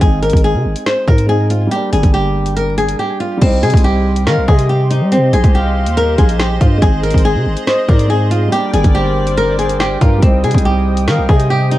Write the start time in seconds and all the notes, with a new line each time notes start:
Already playing: G#3
0.01 G#1 C4 G#4, kick, closed hi-hat
0.06 D#4
0.22 A#4, closed hi-hat
0.30 G#1, kick, closed hi-hat
0.37 closed hi-hat
0.44 G#4
0.54 C3
0.65 G#1
0.76 closed hi-hat
0.86 C5, snare
1.08 G#2 A#4, kick
1.18 closed hi-hat
1.27 G#3 C4 G#4
1.31 D#4
1.50 F4, closed hi-hat
1.67 G3
1.71 A#3 G4, closed hi-hat
1.76 D4
1.93 G1 G#4, closed hi-hat
2.03 G1, kick, closed hi-hat
2.14 G4
2.46 closed hi-hat
2.57 A#4, closed hi-hat
2.78 G#4, closed hi-hat
2.89 closed hi-hat
2.99 G4
3.20 F4
3.37 G3
3.41 C2 C4 G4 C5 D#5 C6, kick, closed hi-hat, crash
3.46 D#4
3.63 C3 G#4, closed hi-hat
3.70 C2, kick, closed hi-hat
3.77 closed hi-hat
3.84 G4
4.16 closed hi-hat
4.27 D#3 A#4 F5, snare
4.37 C2
4.48 C3 G#4 D#5, kick
4.59 closed hi-hat
4.69 G4
4.90 D#4, closed hi-hat
5.01 G3
5.12 C4, closed hi-hat
5.17 C3
5.33 A#1 G#4, closed hi-hat
5.44 C2, kick, closed hi-hat
5.55 G4 F5
5.86 D#2, closed hi-hat
5.97 A#4, closed hi-hat
6.18 A#1 G#4, kick, closed hi-hat
6.29 closed hi-hat
6.39 G4, snare
6.61 G2 F4, kick, closed hi-hat
6.78 G#3
6.82 G#1 C4 G#4, kick, closed hi-hat
6.87 D#4
7.03 A#4, closed hi-hat
7.11 G#1, kick, closed hi-hat
7.18 closed hi-hat
7.25 G#4
7.35 C3
7.46 G#1
7.57 closed hi-hat
7.67 C5 D#5, snare
7.89 G#2 A#4 D5, kick
7.99 closed hi-hat
8.08 G#3 C4 G#4
8.12 D#4
8.31 F4, closed hi-hat
8.48 G3
8.52 A#3 G4 A#4 D5 G5 D6, closed hi-hat
8.57 D4
8.73 G1 G#4, closed hi-hat
8.84 G1, kick, closed hi-hat
8.95 G4 C5
9.27 closed hi-hat
9.37 A#4, closed hi-hat
9.59 G#4, closed hi-hat
9.69 closed hi-hat
9.80 G4, snare
10.01 G2 F4 A#4, kick, closed hi-hat
10.18 G3
10.22 C2 C4 C5 D#5 D#6, kick, closed hi-hat
10.27 D#4
10.44 C3 G#4, closed hi-hat
10.51 C2, kick, closed hi-hat
10.58 closed hi-hat
10.65 G4
10.97 closed hi-hat
11.08 D#3 A#4 F5, snare
11.18 C2
11.29 C3 G#4 D#5, kick
11.40 closed hi-hat
11.50 G4
11.71 D#4, closed hi-hat